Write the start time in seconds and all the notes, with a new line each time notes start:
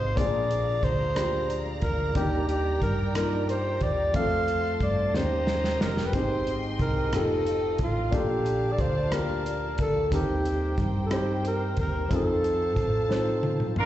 Already playing: G#1 G#2 D#3 F3 G#3 C4 D#4 F4 G4 G#4 C5 F5 C6
0.16 A#1 A#2 D3 F3 G#3 A#3 D4 F4 G#4 D5 A#5, kick, closed hi-hat
0.51 closed hi-hat
0.83 D2 C5, kick, closed hi-hat
1.14 A#3 D4 F4 G4, cross-stick, closed hi-hat
1.50 closed hi-hat
1.82 D2 A#4, kick, closed hi-hat
2.15 D#2 D#3 G3 A#3 D4 D#4 G4 A#4 D5 G5, kick, closed hi-hat
2.48 G4, closed hi-hat
2.82 G2 A#4, kick, closed hi-hat
3.14 A#3 D4 D#4 F4 A#4, cross-stick, closed hi-hat
3.49 C5, closed hi-hat
3.81 D#2 D5, kick, closed hi-hat
4.14 F2 A3 C4 F4 A4 C5 F5 A5 C6, kick, closed hi-hat
4.48 closed hi-hat
4.80 G2 D5, kick, closed hi-hat
5.13 D#2 D#3 G3 A#3 C#4 D#4 G4 C5 D#5 G5 A#5, snare
5.47 snare
5.64 snare
5.81 F1 A#4, snare
5.97 snare
6.07 B4
6.13 G#1 G#2 G#3 C4 D#4 G4 C5 D#5 C6, kick, closed hi-hat
6.17 G#3
6.47 closed hi-hat
6.79 C2 A#4, kick, closed hi-hat
7.12 F1 A#3 C4 D#4 F4 G4 F5, cross-stick, closed hi-hat
7.16 A4
7.46 closed hi-hat
7.78 A1 F4, kick, closed hi-hat
8.11 A#1 A#2 A#3 D4 F4 G4 A4 D5 A5, kick, closed hi-hat
8.15 D3 F3
8.46 closed hi-hat
8.73 D5
8.78 D2 C5, kick, cross-stick, closed hi-hat
9.11 A#3 D4 F4 G4 A#4, cross-stick, closed hi-hat
9.46 closed hi-hat
9.78 D2 A4, kick, closed hi-hat
10.11 D#2 D#3 G3 C4 D#4 G4 A#4 C5 G5, kick, closed hi-hat
10.45 closed hi-hat
10.78 G2, kick, closed hi-hat
11.06 C4 A4
11.11 D#4 G4 C5, cross-stick, closed hi-hat
11.45 A#4, closed hi-hat
11.77 D#2, kick, closed hi-hat
11.81 A#4
12.09 F2 F3 C4 D#4 F4 A4 F5 A5, kick, closed hi-hat
12.15 A4
12.44 closed hi-hat
12.76 A2, kick, closed hi-hat
13.08 C4 D#4 F4 C5, snare
13.43 high tom
13.60 mid tom
13.76 A1 D4 F4, mid tom
13.81 A#4